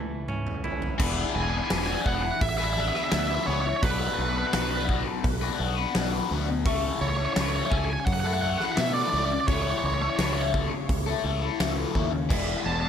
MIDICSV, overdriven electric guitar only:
0, 0, Header, 1, 3, 480
1, 0, Start_track
1, 0, Key_signature, 3, "major"
1, 0, Tempo, 706714
1, 681, Time_signature, 4, 2, 24, 8
1, 8754, End_track
2, 0, Start_track
2, 0, Title_t, "Overdriven electric guitar"
2, 0, Program_c, 0, 29
2, 668, Note_on_c, 0, 52, 88
2, 678, Note_on_c, 0, 59, 99
2, 683, Note_on_c, 0, 62, 102
2, 687, Note_on_c, 0, 68, 113
2, 691, Note_on_c, 0, 71, 105
2, 1032, Note_off_c, 0, 71, 0
2, 1034, Note_on_c, 0, 71, 68
2, 1037, Note_off_c, 0, 68, 0
2, 1045, Note_on_c, 0, 68, 69
2, 1053, Note_off_c, 0, 62, 0
2, 1055, Note_on_c, 0, 62, 57
2, 1146, Note_off_c, 0, 52, 0
2, 1154, Note_on_c, 0, 52, 106
2, 1158, Note_off_c, 0, 59, 0
2, 1161, Note_on_c, 0, 59, 95
2, 1163, Note_off_c, 0, 62, 0
2, 1163, Note_off_c, 0, 68, 0
2, 1166, Note_on_c, 0, 62, 107
2, 1171, Note_on_c, 0, 68, 107
2, 1174, Note_off_c, 0, 71, 0
2, 1176, Note_on_c, 0, 71, 115
2, 1389, Note_off_c, 0, 59, 0
2, 1392, Note_on_c, 0, 59, 70
2, 1397, Note_off_c, 0, 62, 0
2, 1399, Note_off_c, 0, 68, 0
2, 1399, Note_on_c, 0, 62, 84
2, 1408, Note_on_c, 0, 68, 82
2, 1409, Note_off_c, 0, 71, 0
2, 1412, Note_on_c, 0, 71, 76
2, 1511, Note_off_c, 0, 71, 0
2, 1516, Note_off_c, 0, 68, 0
2, 1517, Note_off_c, 0, 62, 0
2, 1518, Note_off_c, 0, 59, 0
2, 1639, Note_off_c, 0, 52, 0
2, 1754, Note_on_c, 0, 71, 78
2, 1766, Note_on_c, 0, 68, 69
2, 1777, Note_on_c, 0, 62, 65
2, 1877, Note_off_c, 0, 62, 0
2, 1878, Note_on_c, 0, 59, 79
2, 1884, Note_off_c, 0, 68, 0
2, 1885, Note_on_c, 0, 62, 90
2, 1890, Note_off_c, 0, 71, 0
2, 1892, Note_on_c, 0, 68, 88
2, 1899, Note_on_c, 0, 71, 80
2, 1990, Note_off_c, 0, 71, 0
2, 1998, Note_on_c, 0, 71, 73
2, 2001, Note_off_c, 0, 68, 0
2, 2009, Note_on_c, 0, 68, 68
2, 2011, Note_off_c, 0, 62, 0
2, 2019, Note_on_c, 0, 62, 65
2, 2113, Note_off_c, 0, 59, 0
2, 2115, Note_on_c, 0, 52, 90
2, 2118, Note_off_c, 0, 62, 0
2, 2122, Note_on_c, 0, 59, 110
2, 2124, Note_off_c, 0, 68, 0
2, 2126, Note_on_c, 0, 62, 98
2, 2129, Note_off_c, 0, 71, 0
2, 2132, Note_on_c, 0, 68, 99
2, 2137, Note_on_c, 0, 71, 108
2, 2348, Note_off_c, 0, 59, 0
2, 2356, Note_on_c, 0, 59, 88
2, 2358, Note_off_c, 0, 62, 0
2, 2363, Note_off_c, 0, 68, 0
2, 2367, Note_on_c, 0, 62, 88
2, 2370, Note_off_c, 0, 71, 0
2, 2372, Note_on_c, 0, 68, 92
2, 2379, Note_on_c, 0, 71, 98
2, 2473, Note_off_c, 0, 68, 0
2, 2473, Note_off_c, 0, 71, 0
2, 2476, Note_off_c, 0, 62, 0
2, 2478, Note_off_c, 0, 59, 0
2, 2585, Note_off_c, 0, 52, 0
2, 2597, Note_on_c, 0, 47, 99
2, 2600, Note_on_c, 0, 54, 96
2, 2607, Note_on_c, 0, 59, 106
2, 2611, Note_on_c, 0, 62, 112
2, 2613, Note_on_c, 0, 66, 108
2, 2619, Note_on_c, 0, 71, 111
2, 2951, Note_off_c, 0, 71, 0
2, 2959, Note_on_c, 0, 71, 76
2, 2961, Note_off_c, 0, 66, 0
2, 2967, Note_off_c, 0, 62, 0
2, 2969, Note_on_c, 0, 66, 60
2, 2973, Note_off_c, 0, 59, 0
2, 2975, Note_on_c, 0, 62, 60
2, 2981, Note_on_c, 0, 59, 53
2, 3071, Note_off_c, 0, 47, 0
2, 3074, Note_off_c, 0, 54, 0
2, 3079, Note_off_c, 0, 59, 0
2, 3079, Note_on_c, 0, 47, 110
2, 3082, Note_on_c, 0, 54, 99
2, 3084, Note_off_c, 0, 62, 0
2, 3087, Note_off_c, 0, 66, 0
2, 3088, Note_on_c, 0, 59, 93
2, 3092, Note_off_c, 0, 71, 0
2, 3092, Note_on_c, 0, 62, 107
2, 3095, Note_on_c, 0, 66, 99
2, 3100, Note_on_c, 0, 71, 110
2, 3309, Note_off_c, 0, 59, 0
2, 3316, Note_off_c, 0, 62, 0
2, 3317, Note_on_c, 0, 59, 72
2, 3324, Note_off_c, 0, 66, 0
2, 3325, Note_on_c, 0, 62, 83
2, 3331, Note_off_c, 0, 71, 0
2, 3332, Note_on_c, 0, 66, 83
2, 3339, Note_on_c, 0, 71, 75
2, 3432, Note_off_c, 0, 71, 0
2, 3435, Note_off_c, 0, 62, 0
2, 3436, Note_off_c, 0, 66, 0
2, 3439, Note_off_c, 0, 59, 0
2, 3561, Note_off_c, 0, 47, 0
2, 3562, Note_off_c, 0, 54, 0
2, 3678, Note_on_c, 0, 71, 80
2, 3685, Note_on_c, 0, 66, 75
2, 3691, Note_on_c, 0, 62, 66
2, 3700, Note_on_c, 0, 59, 66
2, 3786, Note_off_c, 0, 59, 0
2, 3794, Note_on_c, 0, 59, 87
2, 3796, Note_off_c, 0, 62, 0
2, 3801, Note_off_c, 0, 66, 0
2, 3804, Note_on_c, 0, 62, 92
2, 3808, Note_off_c, 0, 71, 0
2, 3810, Note_on_c, 0, 66, 93
2, 3816, Note_on_c, 0, 71, 92
2, 3908, Note_off_c, 0, 71, 0
2, 3916, Note_off_c, 0, 66, 0
2, 3916, Note_on_c, 0, 71, 83
2, 3924, Note_on_c, 0, 66, 67
2, 3925, Note_off_c, 0, 62, 0
2, 3930, Note_off_c, 0, 59, 0
2, 3933, Note_on_c, 0, 62, 67
2, 3938, Note_on_c, 0, 59, 60
2, 4038, Note_on_c, 0, 47, 90
2, 4041, Note_off_c, 0, 59, 0
2, 4045, Note_on_c, 0, 54, 98
2, 4046, Note_off_c, 0, 62, 0
2, 4049, Note_off_c, 0, 66, 0
2, 4050, Note_on_c, 0, 59, 89
2, 4053, Note_off_c, 0, 71, 0
2, 4054, Note_on_c, 0, 62, 118
2, 4057, Note_on_c, 0, 66, 96
2, 4061, Note_on_c, 0, 71, 113
2, 4273, Note_off_c, 0, 59, 0
2, 4280, Note_off_c, 0, 62, 0
2, 4281, Note_on_c, 0, 59, 85
2, 4288, Note_on_c, 0, 62, 98
2, 4290, Note_off_c, 0, 66, 0
2, 4293, Note_off_c, 0, 71, 0
2, 4298, Note_on_c, 0, 66, 87
2, 4301, Note_on_c, 0, 71, 90
2, 4399, Note_off_c, 0, 71, 0
2, 4402, Note_off_c, 0, 66, 0
2, 4405, Note_off_c, 0, 59, 0
2, 4405, Note_off_c, 0, 62, 0
2, 4506, Note_off_c, 0, 47, 0
2, 4509, Note_off_c, 0, 54, 0
2, 4522, Note_on_c, 0, 49, 95
2, 4528, Note_on_c, 0, 52, 104
2, 4533, Note_on_c, 0, 57, 107
2, 4537, Note_on_c, 0, 64, 98
2, 4542, Note_on_c, 0, 69, 111
2, 4877, Note_off_c, 0, 69, 0
2, 4879, Note_on_c, 0, 69, 76
2, 4890, Note_off_c, 0, 64, 0
2, 4892, Note_on_c, 0, 64, 63
2, 4900, Note_off_c, 0, 57, 0
2, 4902, Note_on_c, 0, 57, 64
2, 4996, Note_off_c, 0, 49, 0
2, 4998, Note_on_c, 0, 49, 96
2, 5003, Note_off_c, 0, 52, 0
2, 5006, Note_on_c, 0, 52, 105
2, 5009, Note_off_c, 0, 57, 0
2, 5011, Note_on_c, 0, 57, 93
2, 5012, Note_off_c, 0, 64, 0
2, 5015, Note_on_c, 0, 64, 120
2, 5017, Note_off_c, 0, 69, 0
2, 5019, Note_on_c, 0, 69, 110
2, 5236, Note_off_c, 0, 52, 0
2, 5239, Note_on_c, 0, 52, 80
2, 5245, Note_off_c, 0, 57, 0
2, 5248, Note_on_c, 0, 57, 78
2, 5252, Note_off_c, 0, 64, 0
2, 5255, Note_on_c, 0, 64, 80
2, 5257, Note_off_c, 0, 69, 0
2, 5260, Note_on_c, 0, 69, 75
2, 5355, Note_off_c, 0, 69, 0
2, 5358, Note_off_c, 0, 57, 0
2, 5362, Note_off_c, 0, 64, 0
2, 5366, Note_off_c, 0, 52, 0
2, 5598, Note_on_c, 0, 69, 87
2, 5610, Note_on_c, 0, 64, 77
2, 5619, Note_on_c, 0, 57, 73
2, 5719, Note_on_c, 0, 52, 83
2, 5720, Note_off_c, 0, 57, 0
2, 5728, Note_on_c, 0, 57, 84
2, 5732, Note_off_c, 0, 64, 0
2, 5735, Note_off_c, 0, 69, 0
2, 5735, Note_on_c, 0, 64, 87
2, 5743, Note_on_c, 0, 69, 91
2, 5835, Note_off_c, 0, 69, 0
2, 5843, Note_on_c, 0, 69, 81
2, 5851, Note_off_c, 0, 64, 0
2, 5854, Note_on_c, 0, 64, 66
2, 5858, Note_off_c, 0, 57, 0
2, 5866, Note_on_c, 0, 57, 59
2, 5957, Note_off_c, 0, 49, 0
2, 5959, Note_on_c, 0, 49, 110
2, 5963, Note_off_c, 0, 52, 0
2, 5964, Note_off_c, 0, 57, 0
2, 5966, Note_on_c, 0, 52, 106
2, 5972, Note_on_c, 0, 57, 106
2, 5975, Note_off_c, 0, 64, 0
2, 5975, Note_off_c, 0, 69, 0
2, 5978, Note_on_c, 0, 64, 121
2, 5984, Note_on_c, 0, 69, 101
2, 6199, Note_off_c, 0, 52, 0
2, 6202, Note_on_c, 0, 52, 84
2, 6204, Note_off_c, 0, 57, 0
2, 6212, Note_on_c, 0, 57, 86
2, 6214, Note_off_c, 0, 64, 0
2, 6216, Note_off_c, 0, 69, 0
2, 6217, Note_on_c, 0, 64, 92
2, 6224, Note_on_c, 0, 69, 92
2, 6319, Note_off_c, 0, 69, 0
2, 6324, Note_off_c, 0, 57, 0
2, 6326, Note_off_c, 0, 64, 0
2, 6329, Note_off_c, 0, 52, 0
2, 6434, Note_off_c, 0, 49, 0
2, 6442, Note_on_c, 0, 49, 91
2, 6448, Note_on_c, 0, 52, 106
2, 6452, Note_on_c, 0, 57, 100
2, 6459, Note_on_c, 0, 64, 97
2, 6463, Note_on_c, 0, 69, 111
2, 6790, Note_off_c, 0, 69, 0
2, 6798, Note_on_c, 0, 69, 67
2, 6807, Note_off_c, 0, 64, 0
2, 6810, Note_on_c, 0, 64, 74
2, 6811, Note_off_c, 0, 57, 0
2, 6820, Note_on_c, 0, 57, 59
2, 6908, Note_off_c, 0, 49, 0
2, 6916, Note_on_c, 0, 49, 110
2, 6921, Note_off_c, 0, 52, 0
2, 6921, Note_off_c, 0, 57, 0
2, 6923, Note_on_c, 0, 52, 93
2, 6929, Note_on_c, 0, 57, 94
2, 6930, Note_off_c, 0, 64, 0
2, 6930, Note_off_c, 0, 69, 0
2, 6933, Note_on_c, 0, 64, 107
2, 6938, Note_on_c, 0, 69, 105
2, 7156, Note_off_c, 0, 52, 0
2, 7158, Note_on_c, 0, 52, 68
2, 7159, Note_off_c, 0, 57, 0
2, 7167, Note_on_c, 0, 57, 81
2, 7170, Note_off_c, 0, 69, 0
2, 7171, Note_off_c, 0, 64, 0
2, 7174, Note_on_c, 0, 64, 84
2, 7178, Note_on_c, 0, 69, 82
2, 7277, Note_off_c, 0, 69, 0
2, 7278, Note_off_c, 0, 57, 0
2, 7278, Note_off_c, 0, 64, 0
2, 7280, Note_off_c, 0, 52, 0
2, 7397, Note_off_c, 0, 49, 0
2, 7516, Note_on_c, 0, 69, 80
2, 7529, Note_on_c, 0, 64, 64
2, 7538, Note_on_c, 0, 57, 64
2, 7634, Note_off_c, 0, 57, 0
2, 7634, Note_on_c, 0, 52, 70
2, 7643, Note_off_c, 0, 64, 0
2, 7643, Note_on_c, 0, 57, 78
2, 7649, Note_off_c, 0, 69, 0
2, 7651, Note_on_c, 0, 64, 88
2, 7657, Note_on_c, 0, 69, 91
2, 7746, Note_off_c, 0, 69, 0
2, 7754, Note_on_c, 0, 69, 70
2, 7756, Note_off_c, 0, 64, 0
2, 7764, Note_on_c, 0, 64, 71
2, 7766, Note_off_c, 0, 57, 0
2, 7774, Note_on_c, 0, 57, 58
2, 7869, Note_off_c, 0, 52, 0
2, 7872, Note_on_c, 0, 49, 89
2, 7875, Note_off_c, 0, 57, 0
2, 7878, Note_on_c, 0, 52, 97
2, 7880, Note_off_c, 0, 64, 0
2, 7884, Note_off_c, 0, 69, 0
2, 7884, Note_on_c, 0, 57, 99
2, 7888, Note_on_c, 0, 64, 94
2, 7893, Note_on_c, 0, 69, 103
2, 8101, Note_off_c, 0, 52, 0
2, 8109, Note_off_c, 0, 57, 0
2, 8109, Note_on_c, 0, 52, 72
2, 8116, Note_off_c, 0, 64, 0
2, 8117, Note_on_c, 0, 57, 88
2, 8121, Note_off_c, 0, 69, 0
2, 8124, Note_on_c, 0, 64, 92
2, 8130, Note_on_c, 0, 69, 83
2, 8225, Note_off_c, 0, 69, 0
2, 8228, Note_off_c, 0, 57, 0
2, 8228, Note_off_c, 0, 64, 0
2, 8230, Note_off_c, 0, 52, 0
2, 8340, Note_off_c, 0, 49, 0
2, 8349, Note_on_c, 0, 52, 101
2, 8355, Note_on_c, 0, 59, 89
2, 8364, Note_on_c, 0, 62, 92
2, 8370, Note_on_c, 0, 68, 103
2, 8698, Note_off_c, 0, 68, 0
2, 8706, Note_on_c, 0, 68, 66
2, 8715, Note_off_c, 0, 62, 0
2, 8718, Note_on_c, 0, 62, 67
2, 8727, Note_off_c, 0, 59, 0
2, 8730, Note_on_c, 0, 59, 53
2, 8754, Note_off_c, 0, 52, 0
2, 8754, Note_off_c, 0, 59, 0
2, 8754, Note_off_c, 0, 62, 0
2, 8754, Note_off_c, 0, 68, 0
2, 8754, End_track
3, 0, Start_track
3, 0, Title_t, "Muted overdriven electric guitar strokes"
3, 1519, Note_on_c, 9, 29, 59
3, 1587, Note_off_c, 9, 29, 0
3, 2481, Note_on_c, 9, 29, 57
3, 2549, Note_off_c, 9, 29, 0
3, 3440, Note_on_c, 9, 29, 56
3, 3508, Note_off_c, 9, 29, 0
3, 4407, Note_on_c, 9, 29, 58
3, 4475, Note_off_c, 9, 29, 0
3, 5363, Note_on_c, 9, 29, 65
3, 5431, Note_off_c, 9, 29, 0
3, 6327, Note_on_c, 9, 29, 57
3, 6395, Note_off_c, 9, 29, 0
3, 7285, Note_on_c, 9, 29, 56
3, 7353, Note_off_c, 9, 29, 0
3, 8233, Note_on_c, 9, 29, 58
3, 8301, Note_off_c, 9, 29, 0
3, 8754, End_track
0, 0, End_of_file